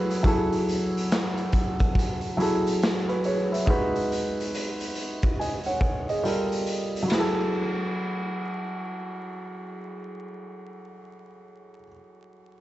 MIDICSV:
0, 0, Header, 1, 3, 480
1, 0, Start_track
1, 0, Tempo, 857143
1, 136, Time_signature, 4, 2, 24, 8
1, 7059, End_track
2, 0, Start_track
2, 0, Title_t, "Felt piano"
2, 0, Program_c, 0, 0
2, 0, Control_c, 0, 64, 127
2, 0, Note_on_c, 0, 54, 87
2, 0, Note_on_c, 0, 64, 76
2, 0, Note_on_c, 0, 66, 51
2, 0, Note_on_c, 0, 68, 81
2, 0, Note_on_c, 0, 69, 83
2, 0, Note_on_c, 0, 71, 102
2, 58, Note_off_c, 0, 54, 0
2, 61, Note_off_c, 0, 64, 0
2, 64, Note_off_c, 0, 68, 0
2, 67, Note_off_c, 0, 69, 0
2, 88, Note_off_c, 0, 71, 0
2, 129, Note_on_c, 0, 54, 84
2, 137, Note_on_c, 0, 64, 78
2, 143, Note_off_c, 0, 66, 0
2, 143, Control_c, 0, 64, 0
2, 146, Note_on_c, 0, 68, 81
2, 153, Note_on_c, 0, 69, 91
2, 239, Control_c, 0, 64, 127
2, 786, Note_off_c, 0, 54, 0
2, 790, Note_off_c, 0, 64, 0
2, 794, Note_off_c, 0, 68, 0
2, 798, Note_off_c, 0, 69, 0
2, 1328, Note_on_c, 0, 54, 83
2, 1337, Note_on_c, 0, 64, 63
2, 1344, Note_on_c, 0, 68, 73
2, 1352, Note_on_c, 0, 69, 84
2, 1510, Note_off_c, 0, 54, 0
2, 1514, Note_off_c, 0, 64, 0
2, 1517, Note_off_c, 0, 68, 0
2, 1522, Note_off_c, 0, 69, 0
2, 1730, Note_on_c, 0, 71, 66
2, 1732, Note_on_c, 0, 66, 53
2, 1814, Note_off_c, 0, 71, 0
2, 1815, Note_off_c, 0, 66, 0
2, 1822, Note_on_c, 0, 73, 68
2, 1825, Note_on_c, 0, 68, 52
2, 1960, Note_off_c, 0, 73, 0
2, 1962, Note_off_c, 0, 68, 0
2, 1972, Note_on_c, 0, 76, 58
2, 1975, Note_on_c, 0, 71, 49
2, 2049, Note_on_c, 0, 56, 88
2, 2056, Note_on_c, 0, 63, 80
2, 2063, Control_c, 0, 64, 0
2, 2065, Note_off_c, 0, 71, 0
2, 2065, Note_on_c, 0, 66, 79
2, 2073, Note_on_c, 0, 71, 92
2, 2150, Control_c, 0, 64, 127
2, 2196, Note_off_c, 0, 76, 0
2, 2706, Note_off_c, 0, 56, 0
2, 2710, Note_off_c, 0, 63, 0
2, 2714, Note_off_c, 0, 66, 0
2, 2718, Note_off_c, 0, 71, 0
2, 3021, Note_on_c, 0, 80, 60
2, 3024, Note_on_c, 0, 75, 47
2, 3160, Note_off_c, 0, 80, 0
2, 3161, Note_off_c, 0, 75, 0
2, 3169, Note_on_c, 0, 78, 65
2, 3173, Note_on_c, 0, 73, 57
2, 3395, Note_off_c, 0, 78, 0
2, 3397, Note_off_c, 0, 73, 0
2, 3410, Note_on_c, 0, 75, 64
2, 3414, Note_on_c, 0, 68, 47
2, 3491, Note_on_c, 0, 55, 65
2, 3499, Note_on_c, 0, 65, 52
2, 3503, Control_c, 0, 64, 0
2, 3507, Note_on_c, 0, 69, 58
2, 3514, Note_on_c, 0, 70, 65
2, 3607, Control_c, 0, 64, 127
2, 3635, Note_off_c, 0, 75, 0
2, 3637, Note_off_c, 0, 68, 0
2, 3828, Note_off_c, 0, 55, 0
2, 3832, Note_off_c, 0, 65, 0
2, 3836, Note_off_c, 0, 69, 0
2, 3840, Note_off_c, 0, 70, 0
2, 3934, Note_on_c, 0, 54, 77
2, 3965, Note_on_c, 0, 64, 63
2, 3982, Control_c, 0, 64, 0
2, 3996, Note_on_c, 0, 68, 76
2, 4027, Note_on_c, 0, 69, 87
2, 4088, Control_c, 0, 64, 127
2, 6585, Note_off_c, 0, 54, 0
2, 6616, Note_off_c, 0, 64, 0
2, 6647, Note_off_c, 0, 68, 0
2, 6677, Note_off_c, 0, 69, 0
2, 7059, End_track
3, 0, Start_track
3, 0, Title_t, "Drums"
3, 58, Note_on_c, 9, 42, 43
3, 114, Note_off_c, 9, 42, 0
3, 135, Note_on_c, 9, 36, 99
3, 139, Note_on_c, 9, 42, 64
3, 191, Note_off_c, 9, 36, 0
3, 195, Note_off_c, 9, 42, 0
3, 293, Note_on_c, 9, 42, 43
3, 349, Note_off_c, 9, 42, 0
3, 384, Note_on_c, 9, 42, 51
3, 440, Note_off_c, 9, 42, 0
3, 543, Note_on_c, 9, 42, 39
3, 599, Note_off_c, 9, 42, 0
3, 625, Note_on_c, 9, 42, 84
3, 628, Note_on_c, 9, 38, 97
3, 634, Note_on_c, 9, 39, 85
3, 681, Note_off_c, 9, 42, 0
3, 684, Note_off_c, 9, 38, 0
3, 690, Note_off_c, 9, 39, 0
3, 769, Note_on_c, 9, 42, 45
3, 825, Note_off_c, 9, 42, 0
3, 853, Note_on_c, 9, 42, 64
3, 858, Note_on_c, 9, 36, 87
3, 909, Note_off_c, 9, 42, 0
3, 914, Note_off_c, 9, 36, 0
3, 1004, Note_on_c, 9, 42, 44
3, 1010, Note_on_c, 9, 36, 83
3, 1060, Note_off_c, 9, 42, 0
3, 1066, Note_off_c, 9, 36, 0
3, 1094, Note_on_c, 9, 36, 82
3, 1114, Note_on_c, 9, 42, 85
3, 1150, Note_off_c, 9, 36, 0
3, 1170, Note_off_c, 9, 42, 0
3, 1238, Note_on_c, 9, 42, 46
3, 1294, Note_off_c, 9, 42, 0
3, 1344, Note_on_c, 9, 42, 54
3, 1400, Note_off_c, 9, 42, 0
3, 1493, Note_on_c, 9, 42, 47
3, 1549, Note_off_c, 9, 42, 0
3, 1582, Note_on_c, 9, 42, 64
3, 1587, Note_on_c, 9, 38, 105
3, 1592, Note_on_c, 9, 39, 85
3, 1638, Note_off_c, 9, 42, 0
3, 1643, Note_off_c, 9, 38, 0
3, 1648, Note_off_c, 9, 39, 0
3, 1732, Note_on_c, 9, 42, 38
3, 1788, Note_off_c, 9, 42, 0
3, 1814, Note_on_c, 9, 42, 59
3, 1870, Note_off_c, 9, 42, 0
3, 1982, Note_on_c, 9, 42, 47
3, 2038, Note_off_c, 9, 42, 0
3, 2057, Note_on_c, 9, 36, 93
3, 2063, Note_on_c, 9, 42, 57
3, 2113, Note_off_c, 9, 36, 0
3, 2119, Note_off_c, 9, 42, 0
3, 2215, Note_on_c, 9, 42, 43
3, 2271, Note_off_c, 9, 42, 0
3, 2306, Note_on_c, 9, 42, 59
3, 2362, Note_off_c, 9, 42, 0
3, 2463, Note_on_c, 9, 42, 38
3, 2519, Note_off_c, 9, 42, 0
3, 2545, Note_on_c, 9, 42, 72
3, 2601, Note_off_c, 9, 42, 0
3, 2688, Note_on_c, 9, 42, 45
3, 2744, Note_off_c, 9, 42, 0
3, 2773, Note_on_c, 9, 42, 54
3, 2829, Note_off_c, 9, 42, 0
3, 2924, Note_on_c, 9, 42, 43
3, 2930, Note_on_c, 9, 36, 88
3, 2980, Note_off_c, 9, 42, 0
3, 2986, Note_off_c, 9, 36, 0
3, 3031, Note_on_c, 9, 42, 78
3, 3087, Note_off_c, 9, 42, 0
3, 3155, Note_on_c, 9, 42, 42
3, 3211, Note_off_c, 9, 42, 0
3, 3253, Note_on_c, 9, 36, 90
3, 3262, Note_on_c, 9, 42, 53
3, 3309, Note_off_c, 9, 36, 0
3, 3318, Note_off_c, 9, 42, 0
3, 3410, Note_on_c, 9, 42, 41
3, 3466, Note_off_c, 9, 42, 0
3, 3499, Note_on_c, 9, 42, 64
3, 3555, Note_off_c, 9, 42, 0
3, 3650, Note_on_c, 9, 42, 42
3, 3706, Note_off_c, 9, 42, 0
3, 3731, Note_on_c, 9, 42, 55
3, 3787, Note_off_c, 9, 42, 0
3, 3898, Note_on_c, 9, 42, 41
3, 3954, Note_off_c, 9, 42, 0
3, 3974, Note_on_c, 9, 53, 74
3, 3986, Note_on_c, 9, 38, 83
3, 4030, Note_off_c, 9, 53, 0
3, 4042, Note_off_c, 9, 38, 0
3, 7059, End_track
0, 0, End_of_file